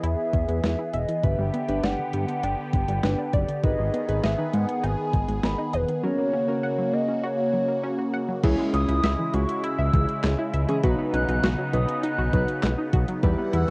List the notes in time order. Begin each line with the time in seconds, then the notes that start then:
Already playing: E3 B3 E4 G#4 B4
0.03 E2 E4 E5, closed hi-hat
0.33 E2 E3, kick, closed hi-hat
0.48 E2 G#3, closed hi-hat
0.63 E2 B3, snare, closed hi-hat
0.79 E4
0.93 E1 D#5 E5, closed hi-hat
1.08 E3, closed hi-hat
1.23 G1 D3 B3 D4 G4 B4 E5, kick, closed hi-hat
1.39 G1 G3
1.54 B3, closed hi-hat
1.68 G1 D4 G4 B4, closed hi-hat
1.83 G1 D5 F#5, snare, closed hi-hat
1.99 D3
2.13 G2 G3, closed hi-hat
2.29 B3, closed hi-hat
2.44 G1 D4 G5, closed hi-hat
2.73 G1 D3, kick, closed hi-hat
2.88 G1 G3, closed hi-hat
3.03 G1 B3 D4 G4 B4, snare, closed hi-hat
3.19 D4
3.33 F#1 D5, kick, closed hi-hat
3.48 D3, closed hi-hat
3.63 G#1 D#3 B3 D#4 G#4 B4 D#5, kick, closed hi-hat
3.78 G#1 G#3
3.93 B3, closed hi-hat
4.08 G#1 D#4 G#4 B4, closed hi-hat
4.23 G#1 D#5 E5, snare, closed hi-hat
4.38 D#3 D#4 G#4 B4
4.53 G#2 G#3 F#5, closed hi-hat
4.68 B3, closed hi-hat
4.83 G#1 D#4 G#5, closed hi-hat
5.13 G#1 D#3, kick, closed hi-hat
5.28 G#1 G#3, closed hi-hat
5.43 G#1 B3 B5, snare, closed hi-hat
5.58 D#4
5.73 E1 B4 D#5, closed hi-hat
5.88 D#3, closed hi-hat
6.03 C#3 F#3 A#3 C#4 F#4 A#4 C#5
6.18 A#3
6.33 C#4
6.48 C#4 F#4 A#4
6.63 F#5
6.78 F#3
6.93 A#3 D#5
7.08 C#4
7.23 F#4 C#5
7.54 F#3
7.68 A#3
7.83 C#4 F#4 C#5
7.98 F#4
8.13 F#5
8.28 F#3
8.43 C#2 C#3 E3 G#3 C#4 E4 G#4, kick, closed hi-hat, crash
8.58 G#3
8.73 C#2 C#4 D#6, closed hi-hat
8.88 C#2 E4, closed hi-hat
9.03 C#2 E5, snare, closed hi-hat
9.19 E3
9.33 C#2 G#3 C#4 E4 F#4 C#6, closed hi-hat
9.49 closed hi-hat
9.63 E4 E6, closed hi-hat
9.78 C#2 E5
9.93 C#2 E3, kick, closed hi-hat
10.09 closed hi-hat
10.23 C#2, snare, clap, closed hi-hat
10.39 E4
10.53 C#2 E5, closed hi-hat
10.69 E3 C#4 E4 G#4, closed hi-hat
10.83 B1 F#3 B3 D#4 F#4 B4, kick, closed hi-hat
10.99 B3
11.13 B1 C#4 F#6, closed hi-hat
11.28 B1 D#4, closed hi-hat
11.43 B1 F#4, snare, closed hi-hat
11.59 F#3
11.73 B1 B3 D#4 F#4 B4 D#6, closed hi-hat
11.89 closed hi-hat
12.04 D#4 F#6, closed hi-hat
12.18 B1 F#4
12.33 B1 F#3 D#4 F#4 B4, kick, closed hi-hat
12.48 closed hi-hat
12.63 B1, snare, clap, closed hi-hat
12.78 D#4
12.93 B1 F#4, kick, closed hi-hat
13.08 F#3, closed hi-hat
13.23 E2 E3 G3 E4 G4 B4 F#5, kick, closed hi-hat
13.38 B3
13.53 E2 E4 E6, closed hi-hat